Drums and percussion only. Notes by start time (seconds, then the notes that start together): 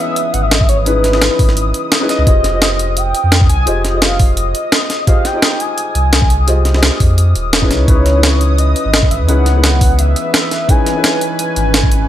0.16 closed hi-hat
0.34 closed hi-hat
0.51 snare, closed hi-hat
0.61 kick
0.69 closed hi-hat
0.86 closed hi-hat
1.04 snare, closed hi-hat
1.13 snare
1.22 snare, closed hi-hat
1.39 kick, open hi-hat
1.49 snare
1.57 closed hi-hat
1.74 closed hi-hat
1.92 snare, closed hi-hat
2.09 snare, closed hi-hat
2.27 kick, closed hi-hat
2.44 snare, closed hi-hat
2.62 snare, closed hi-hat
2.79 closed hi-hat
2.97 closed hi-hat
3.15 closed hi-hat
3.32 snare, closed hi-hat
3.41 kick
3.50 closed hi-hat
3.67 closed hi-hat
3.85 snare, closed hi-hat
4.02 snare, closed hi-hat
4.19 kick, open hi-hat
4.37 closed hi-hat
4.55 closed hi-hat
4.72 snare, closed hi-hat
4.90 snare, closed hi-hat
5.07 kick, closed hi-hat
5.25 snare, closed hi-hat
5.42 snare, closed hi-hat
5.60 closed hi-hat
5.78 closed hi-hat
5.95 closed hi-hat
6.13 snare, closed hi-hat
6.22 kick
6.30 closed hi-hat
6.48 closed hi-hat
6.65 snare, closed hi-hat
6.75 snare
6.83 snare, closed hi-hat
7.00 kick, open hi-hat
7.18 closed hi-hat
7.35 closed hi-hat
7.53 snare, closed hi-hat
7.62 kick
7.71 snare, closed hi-hat
7.88 kick, closed hi-hat
8.06 snare, closed hi-hat
8.23 snare, closed hi-hat
8.41 closed hi-hat
8.58 closed hi-hat
8.76 closed hi-hat
8.94 snare, closed hi-hat
9.03 kick
9.11 closed hi-hat
9.29 closed hi-hat
9.46 snare, closed hi-hat
9.64 snare, closed hi-hat
9.81 kick, open hi-hat
9.99 closed hi-hat
10.16 closed hi-hat
10.34 snare, closed hi-hat
10.51 snare, closed hi-hat
10.69 kick, closed hi-hat
10.86 snare, closed hi-hat
11.04 snare, closed hi-hat
11.21 closed hi-hat
11.39 closed hi-hat
11.56 closed hi-hat
11.74 snare, closed hi-hat
11.83 kick
11.92 closed hi-hat